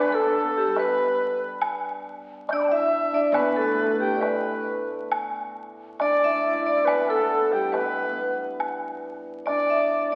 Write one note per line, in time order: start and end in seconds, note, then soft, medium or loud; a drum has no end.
0.00 0.10 B3 medium
0.00 2.52 D4 medium
0.00 0.12 B4 medium
0.00 0.16 B4 medium
0.10 0.19 B3 medium
0.10 0.57 A4 medium
0.15 0.79 A4 medium
0.19 0.26 B3 medium
0.26 0.36 B3 medium
0.37 0.44 B3 soft
0.44 0.50 B3 medium
0.50 0.85 B3 medium
0.57 0.78 G4 medium
0.66 3.63 G3 medium
0.76 1.42 B4 medium
0.76 1.39 B4 medium
0.76 high woodblock soft
0.76 low woodblock soft
0.85 3.36 B3 medium
1.62 high woodblock medium
2.48 3.12 D4 medium
2.48 2.51 D5 medium
2.48 2.53 G6 soft
2.48 high woodblock soft
2.48 low woodblock soft
2.53 2.71 D5 medium
2.53 2.59 D6 soft
2.53 2.56 E6 soft
2.59 2.68 A5 medium
2.59 2.61 B5 soft
2.68 6.20 E4 medium
2.68 3.35 E5 medium
2.68 3.15 E5 medium
2.68 2.72 G5 medium
3.13 4.15 D4 medium
3.13 3.36 D5 medium
3.32 5.99 B2 medium
3.32 4.00 B4 medium
3.32 3.57 B4 medium
3.32 high woodblock medium
3.36 4.24 B3 medium
3.56 3.64 A3 medium
3.56 4.01 A4 medium
3.64 3.72 A3 soft
3.72 3.80 A3 medium
3.81 3.86 A3 soft
3.86 3.92 A3 medium
3.93 4.02 A3 soft
4.00 4.09 A3 soft
4.00 4.16 G4 medium
4.00 4.23 G5 medium
4.09 8.53 A3 soft
4.15 6.00 D4 soft
4.15 4.22 D5 soft
4.21 6.91 B3 medium
4.21 4.85 B4 medium
4.21 4.89 B4 medium
4.21 high woodblock soft
4.21 low woodblock soft
5.12 high woodblock medium
6.00 9.48 D4 medium
6.00 6.61 D5 medium
6.00 6.23 D5 medium
6.00 high woodblock soft
6.00 low woodblock soft
6.24 6.32 E4 medium
6.24 6.68 E5 medium
6.32 6.38 E4 medium
6.38 6.47 E4 medium
6.47 6.54 E4 medium
6.54 6.60 E4 medium
6.61 6.69 E4 medium
6.61 6.86 D5 medium
6.67 6.76 E4 medium
6.67 6.88 D5 medium
6.77 10.15 E4 medium
6.85 7.10 B4 medium
6.85 high woodblock medium
6.91 6.98 B3 medium
6.98 7.05 B3 medium
7.05 7.12 B3 medium
7.05 7.54 A4 medium
7.10 7.19 B3 medium
7.10 7.54 A4 medium
7.20 7.26 B3 medium
7.27 7.31 B3 medium
7.31 7.40 B3 medium
7.41 7.74 B3 medium
7.51 10.15 G3 medium
7.51 7.74 G4 medium
7.51 7.75 G5 medium
7.72 7.80 B3 medium
7.72 8.33 B4 medium
7.72 8.38 B4 medium
7.72 high woodblock soft
7.72 low woodblock soft
7.81 7.89 B3 soft
7.90 7.96 B3 soft
7.96 8.05 B3 soft
8.05 8.11 B3 soft
8.12 8.20 B3 soft
8.21 8.27 B3 soft
8.27 10.15 B3 soft
8.60 high woodblock medium
9.46 10.12 D4 medium
9.46 9.69 D5 medium
9.46 10.09 D5 medium
9.46 high woodblock soft
9.46 low woodblock soft
9.70 10.14 E5 medium